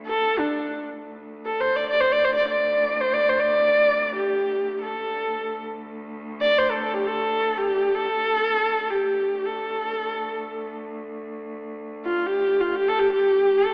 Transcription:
Already playing: D2
0.06 A4
0.39 D4
0.97 D2
1.45 A4
1.61 C5
1.76 D5
1.89 D5
2.00 C5
2.12 D5
2.25 C5
2.35 D5
2.48 D5
3.01 C5
3.13 D5
3.29 C5
3.40 D5
4.15 G4
4.82 A4
5.05 D2
6.41 D5
6.58 C5
6.71 A4
6.82 A4
6.94 G4
7.07 A4
7.57 G4
7.95 A4
8.90 G4
9.12 D2
9.46 A4
12.05 F4
12.26 G4
12.60 F4
12.75 G4
12.89 A4
12.99 G4
13.13 G4
13.23 D2
13.58 A4

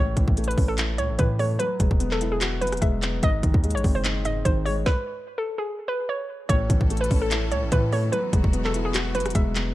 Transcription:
Already playing: A1 A2 C#5
0.17 A1 E3, kick, closed hi-hat
0.28 A1, kick
0.37 A3, closed hi-hat
0.44 B4, closed hi-hat
0.51 closed hi-hat
0.57 A1 C#4, kick, open hi-hat
0.68 A4
0.78 E4, clap, closed hi-hat
0.98 C#2 A2 C#5, closed hi-hat
1.09 A1
1.19 A2 E3 B4, kick, closed hi-hat
1.39 A3 C#5, open hi-hat
1.59 F#3 B4, closed hi-hat
1.80 E1 G#3, kick, closed hi-hat
1.91 E1, kick
2.00 B3, closed hi-hat
2.11 A4, clap
2.21 E4, closed hi-hat
2.32 G#4
2.41 F#4, clap, closed hi-hat
2.61 F#1 F#3 B4, closed hi-hat
2.67 closed hi-hat
2.72 E1, cross-stick, closed hi-hat
2.77 closed hi-hat
2.81 E1 G#3 E5, kick, closed hi-hat
3.02 B3, clap, closed hi-hat
3.23 G#1 G#2 D#5, kick, closed hi-hat
3.43 G#1 D#3, kick, closed hi-hat
3.54 D#2, kick
3.63 G#3, closed hi-hat
3.71 A1, closed hi-hat
3.75 C#5, closed hi-hat
3.84 F#1 C4, kick, open hi-hat
3.95 C5
4.04 D#4, clap, closed hi-hat
4.25 G#2 D#5, closed hi-hat
4.45 G#1 D#3 C5, kick, closed hi-hat
4.65 G#3 C#5, open hi-hat
4.86 B4, kick, snare
5.38 A4
5.58 G#4
5.88 B4
6.09 C#5
6.49 A1 A2 E3 A3 C#4 A4 C#5, kick, closed hi-hat
6.70 A1 E3, kick, closed hi-hat
6.81 A1, kick
6.90 A3, closed hi-hat
6.97 B4, closed hi-hat
7.04 closed hi-hat
7.10 A1 C#4, kick, open hi-hat
7.22 A4
7.31 E4, clap, closed hi-hat
7.51 C#2 A2 C#5, closed hi-hat
7.62 A1
7.72 A2 E3 B4, kick, closed hi-hat
7.92 A3 C#5, open hi-hat
8.12 F#3 G#3 B3 F#4 B4, closed hi-hat
8.33 E1 G#3, kick, closed hi-hat
8.44 E1, kick
8.53 B3, closed hi-hat
8.64 A4, clap
8.74 E4, closed hi-hat
8.85 G#4
8.94 F#4, clap, closed hi-hat
9.15 F#1 F#3 B4, closed hi-hat
9.20 closed hi-hat
9.26 E1, cross-stick, closed hi-hat
9.30 closed hi-hat
9.35 E1 G#3 E5, kick, closed hi-hat
9.55 B3, clap, closed hi-hat

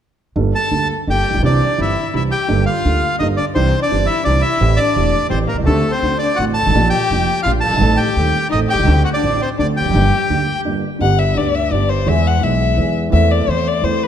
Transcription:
0.36 G1 G2 G3 A#3 D4 A4
0.54 A4 A5
0.71 D2 D3 G3 A#3 D4 A4
1.07 G1 G2 G3 A#3 D4 G4 A4 G5
1.30 A1
1.34 A#1
1.38 B1
1.42 C2 C3 E3 C4 D4 G4 D5
1.78 G1 G2 E3 C4 D4 E4 G4 E5
2.13 C2 C3 E3 C4 D4 E4 G4 E5
2.30 G4 G5
2.48 G1 G2 G3 A#3 D4 A4
2.66 F4 F5
2.85 D2 D3 G3 A#3 D4 A4
3.19 G1 G2 G3 A#3 D4 D#4 A4 D#5
3.37 D4 D5
3.55 C2 C3 E3 C4 D4 G4 C5
3.81 D4 D5
3.91 G1 G2 E3 C4 D4 G4
4.06 E4 E5
4.24 C2 C3 E3 C4 D4 G4 D5
4.42 E4 E5
4.61 A1 A2 E3 A3 C4 G4
4.77 D4 D5
4.96 E1 E2 E3 A3 C4 G4
5.29 A1 A2 E3 A3 C4 G4 C5
5.47 A#3 A#4
5.54 B1
5.58 C2 C#2
5.63 C#2 D2 A3 A4
5.67 D2 D3 C4 G4
5.91 C4 C5
6.02 D2 D3 A3 C4 F#4
6.18 D4 D5
6.35 A1 F#4 F#5
6.39 A1 A2 D3 A3 C4 F#4
6.54 A4 A5
6.61 G1
6.66 G#1
6.70 A1
6.75 A#1 A#2 F3 A#3 D4 G4
6.90 G4 G5
7.10 F1 F2 F3 A#3 D4 G4
7.43 A#1 A#2 F3 F4 F5
7.47 A#3 D4 G4
7.61 A4 A5
7.68 F#1
7.73 G1
7.77 G#1 D#3
7.81 A1 A2 A3 C4 A4
7.97 G4 G5
8.16 D#1 D#2 D#3 A3 C4 A4
8.49 A1 D#4 D#5
8.54 A1 A2 D#3 A3 C4 A4
8.68 G4 G5
8.74 B1
8.79 C2
8.83 C#2
8.87 D2 D3 A3 C4 F#4
9.04 F#4 F#5
9.14 D4 D5
9.23 A1 A2 D3 A3 C4 F#4
9.41 C4 C5
9.57 D2 D3 A3 C4 D4 F#4 D5
9.76 G4 G5
9.81 E1 E2
9.85 F1 F2
9.89 F#1 F#2
9.94 G1 G2 D3 G3 A#3 G4
10.30 D2 D3 G3 A#3 G4
10.65 G1 G2 D3 G3 A#3 G4
10.99 G1 G2 D3 G3 B3 G4 F#5
11.19 E5
11.35 D2 D3 G3 B3 D5
11.39 G4
11.55 E5
11.71 G1 G2 D3 G3 B3 G4 D5
11.89 C5
12.06 E2 E3 G#3 B3 G#4 E5
12.27 F#5
12.40 B1 B2 E3 G#3 B3 G#4 E5
12.76 E2 E3 G#3 B3 G#4
13.10 E2 E3 A3 C4 E5
13.15 A4
13.31 D5
13.47 E2 E3 A3 C4 C5
13.51 A4
13.68 D5
13.82 E2 E3 A3 C4 C5
13.86 A4
14.03 B4

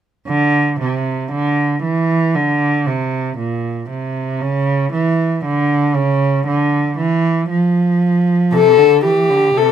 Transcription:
0.28 D3
0.80 C3
1.32 D3
1.83 E3
2.35 D3
2.87 C3
3.38 A#2
3.90 C3
4.41 C#3
4.93 E3
5.45 D3
5.96 C#3
6.47 D3
6.99 E3
7.50 F3
8.52 C3 A4
8.78 D3
9.04 E3 G4
9.30 D3
9.55 C3 A4

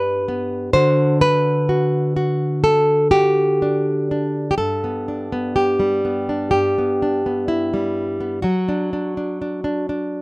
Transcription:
Already playing: G2 G3 B3 D4 B4
0.28 B3
0.73 D3 D4 F#4 C5
1.21 B4
1.69 F#4
2.16 F#4
2.64 A4
3.11 F#4 G4
3.62 D4
4.11 D4
4.51 G4
4.58 G2 A4
4.84 B3
5.08 D4
5.32 B3
5.56 G4
5.79 G3
6.05 B3
6.29 D4
6.51 G2 G4
6.78 B3
7.02 D4
7.26 B3
7.48 E4
7.74 G3
8.21 B3
8.42 F#3 F#4
8.69 D4
8.93 D4
9.17 D4
9.42 D4
9.64 D4
9.89 D4

